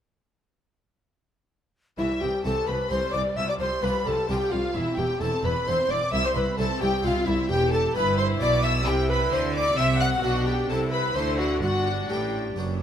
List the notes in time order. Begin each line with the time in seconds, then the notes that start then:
1.98 C2 E3 E4 E5
2.10 G3
2.21 C2 E3 G4 G5
2.33 G3
2.44 C2 E3 C4 G4 A4 A5
2.56 G3
2.67 C2 E3 B4 B5
2.79 G3
2.90 C2 E3 C4 G4 C5 C6
3.02 G3
3.13 C2 E3 D5 D6
3.25 G3
3.36 C2 F3 E5 E6
3.48 G3 D5 D6
3.59 C2 F3 C5 C6
3.71 G3
3.82 C2 F3 D4 F4 B4 B5
3.94 G3
4.05 C2 F3 A4 A5
4.17 G3
4.28 C2 F3 D4 F4 G4 G5
4.40 G3
4.51 C2 F3 F4 F5
4.63 G3
4.74 E1 E2 E4 E5
4.87 C4
4.98 E1 E2 E4 G4 G5
5.10 C4
5.21 E1 E2 C4 E4 A4 A5
5.32 C4
5.44 E1 E2 E4 B4 B5
5.56 C4
5.66 E1 E2 C4 E4 C5 C6
5.79 C4
5.89 E1 E2 E4 D5 D6
6.01 C4
6.12 C2 E4 E5 E6
6.24 C4 C5 C6
6.35 C2 E4 B4 B5
6.48 C4
6.58 C2 C4 E4 A4 A5
6.71 C4
6.81 C2 E4 G4 G5
6.93 C4
7.04 C2 C4 E4 F4 F5
7.16 C4
7.26 C2 E4 E5
7.38 C4
7.49 E1 E2 G4 G5
7.72 A4 A5
7.95 G1 G2 B3 E4 B4 B5
8.18 C5 C6
8.40 B1 B2 B3 E4 D5 D6
8.63 E5 E6
8.86 C2 C3 E4 G4 G5
9.09 B4 B5
9.32 D2 D3 C4 E4 C5 C6
9.55 D5 D6
9.77 C2 C3 C4 E4 E5 E6
10.00 F#5 F#6
10.23 B1 B2 D4 F#4 F#5
10.46 G4 G5
10.69 C2 C3 C4 E4 A4 A5
10.92 B4 B5
11.15 D2 D3 A3 D4 E4 C5 C6
11.38 F#4 F#5
11.62 G1 G2 D4 F#4 F#5
12.09 A1 A2 B3 D4 G4 G5
12.56 F#1 F#2 B3 D4